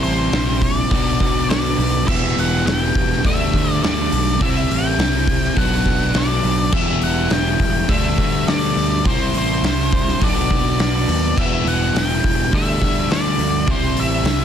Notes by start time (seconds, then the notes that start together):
Already playing: C3 G3 C4 E4
0.03 A1 C5, open hi-hat
0.32 A#1, snare, open hi-hat
0.62 D5, kick, open hi-hat
0.90 B1 B2 F#3 B3 D4, kick, open hi-hat
1.20 B1, kick, open hi-hat
1.49 B1 D5, snare, open hi-hat
1.78 B1, open hi-hat
2.06 E1 E3 G3 B3 E4 E5, kick, crash
2.37 E1 F#5, open hi-hat
2.65 E1 F#5, snare, open hi-hat
2.78 G5
2.95 E1, kick, open hi-hat
3.12 snare
3.23 D2 D3 G3 A3 D4 E5, kick, open hi-hat
3.54 D2, kick, open hi-hat
3.72 D5
3.83 D2 D5, snare, open hi-hat
4.12 B1, open hi-hat
4.39 C2 C3 G3 C4 E4 E5, kick, open hi-hat
4.70 A1 G5, open hi-hat
4.98 C2, snare, open hi-hat
5.27 kick, open hi-hat
5.44 snare
5.54 B1 B2 F#3 B3 D4 F#5, kick, open hi-hat
5.86 B1, kick, open hi-hat
6.14 B1 D5, snare, open hi-hat
6.44 B1, open hi-hat
6.72 E1 E3 G3 B3 E4 E5, kick, crash
7.01 E1 F#5, open hi-hat
7.30 E1 G5, snare, open hi-hat
7.59 E1, kick, open hi-hat
7.88 D2 D3 G3 A3 D4 E5, kick, open hi-hat
8.18 D2, kick, open hi-hat
8.47 D2 D5, snare, open hi-hat
8.76 D2, open hi-hat
9.04 C2 C3 G3 C4 E4 C5, kick, open hi-hat
9.33 A1, open hi-hat
9.38 C5
9.62 C2, snare, open hi-hat
9.92 kick, open hi-hat
10.08 snare
10.20 B1 B2 F#3 B3 D4 D5, kick, open hi-hat
10.51 B1, kick
10.79 B1 D5, snare, open hi-hat
11.08 D#2, open hi-hat
11.36 E1 E3 G3 B3 E4 E5, kick, crash
11.65 E1 F#5, open hi-hat
11.95 E1 G5, snare, open hi-hat
12.24 E1, kick, open hi-hat
12.51 D2 D3 G3 A3 D4 E5, kick, open hi-hat
12.82 D2, kick, open hi-hat
13.09 D2 D5, snare, open hi-hat
13.38 D2, open hi-hat
13.66 C2 C3 G3 C4 E4, kick, open hi-hat
13.71 C5
13.95 A1, open hi-hat
14.00 E5
14.24 C2, snare, open hi-hat